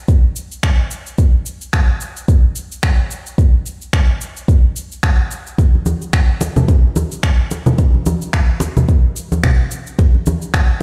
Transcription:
0.08 kick, cabasa
0.36 cabasa
0.52 cabasa
0.63 finger snap, kick, cabasa
0.91 cabasa
1.06 cabasa
1.18 kick, cabasa
1.46 cabasa
1.61 cabasa
1.73 finger snap, kick, cabasa
2.01 cabasa
2.17 cabasa
2.28 kick, cabasa
2.56 cabasa
2.72 cabasa
2.83 finger snap, kick, cabasa
3.11 cabasa
3.26 cabasa
3.38 kick, cabasa
3.66 cabasa
3.81 cabasa
3.93 finger snap, kick, cabasa
4.21 cabasa
4.37 cabasa
4.48 kick, cabasa
4.76 cabasa
4.92 cabasa
5.03 finger snap, kick, cabasa
5.31 cabasa
5.47 cabasa
5.58 kick, muted conga, cabasa
5.75 high conga
5.86 high conga, cabasa
6.02 cabasa
6.13 finger snap, kick, cabasa
6.41 muted conga, cabasa
6.56 high conga, low conga, cabasa
6.68 kick, muted conga, cabasa
6.96 high conga, cabasa
7.12 cabasa
7.23 finger snap, kick, cabasa
7.51 muted conga, cabasa
7.66 high conga, low conga, cabasa
7.78 kick, muted conga, cabasa
7.94 high conga
8.06 high conga, cabasa
8.22 cabasa
8.33 finger snap, kick, cabasa
8.60 muted conga, cabasa
8.77 high conga, low conga, cabasa
8.88 kick, cabasa
9.16 cabasa
9.32 high conga, cabasa
9.43 finger snap, kick, low conga, cabasa
9.71 cabasa
9.87 cabasa
9.99 kick, muted conga, cabasa
10.15 high conga
10.26 high conga, cabasa
10.42 cabasa
10.54 finger snap, kick, cabasa

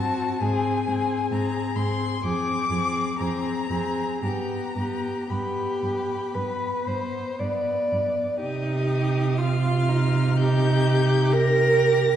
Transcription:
Already playing: C4 F#4 A5
0.41 G#2 C4 G#4 G#5
0.87 G#2 C4 G#4
1.31 G#2 C4 G#4 A#5
1.75 G#2 C4 G#4 C6
2.23 F2 C4 G#4 D6
2.70 F2 C4 G#4
3.18 F2 C4 G#4 A#5
3.69 F2 C4 G#4
4.22 G2 B3 G4 A#5
4.76 G2 B3 G4
5.30 G2 B3 G4 B5
5.82 G2 B3
6.34 G2 B3 B4
6.86 G2 B3 C5
7.38 G2 B3 D5
7.90 G2 B3
8.41 C3 D#4 G4 D#6
9.37 F4 F6
9.89 D#4
10.37 D#4 G4 G6
11.32 G4 A#4 A#6

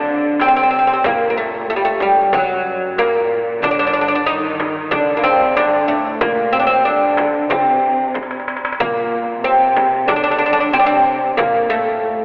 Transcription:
Already playing: D2 D3 D4
0.39 C3 C4, darbuka tek, frame drum
0.48 C4
0.56 C4, darbuka ka
0.63 C4
0.71 C4
0.79 C4
0.87 C4
0.93 C4
1.03 F#1 A#2 A#3, frame drum, darbuka dum
1.22 darbuka ka
1.30 A#3
1.37 A3
1.54 darbuka ka
1.68 A2 A3
1.76 G3
1.85 A3
1.99 G2 G3, frame drum
2.33 G1 F#2 F#3, frame drum, darbuka dum
2.98 A#2 A#3, darbuka tek, frame drum
3.15 darbuka ka
3.47 darbuka ka
3.61 G1 D3 D4, frame drum, darbuka dum
3.71 D4
3.79 D4
3.87 D4
3.93 D4
4.01 D4
4.08 D4
4.15 D4
4.26 D#3 D#4
4.60 darbuka tek, frame drum
4.77 darbuka ka
4.91 D2 D3 D4, frame drum, darbuka dum
5.17 A#3
5.23 C3 C4
5.56 D3 D4, darbuka tek, frame drum
5.73 darbuka ka
5.88 A2 A3
6.06 darbuka ka
6.21 F#1 A#2 A#3, darbuka dum, frame drum
6.37 darbuka ka
6.53 C3 C4, darbuka ka
6.60 D4
6.67 C4
6.85 D3 D4, darbuka ka
7.17 darbuka tek, frame drum
7.34 darbuka ka
7.49 G1 C3 C4, darbuka dum, frame drum
7.83 darbuka ka
8.14 darbuka tek, frame drum
8.23 darbuka ka
8.31 darbuka tek
8.40 darbuka ka
8.48 darbuka tek
8.57 darbuka ka
8.65 darbuka tek
8.73 darbuka ka
8.80 G1 A#2 A#3, frame drum, darbuka dum
8.97 darbuka ka
9.30 darbuka ka
9.44 C3 C4
9.77 darbuka tek, frame drum
9.94 darbuka ka
10.08 D2 D3 D4, frame drum, darbuka dum
10.16 D4
10.24 D4
10.31 D4
10.38 D4
10.46 D4
10.53 D4
10.60 D4
10.73 C3 C4, darbuka tek, frame drum
10.79 D4
10.86 C3 C4
10.91 darbuka ka
11.23 darbuka ka
11.37 F#1 A#2 A#3, frame drum, darbuka dum
11.55 darbuka ka
11.70 A2 A3

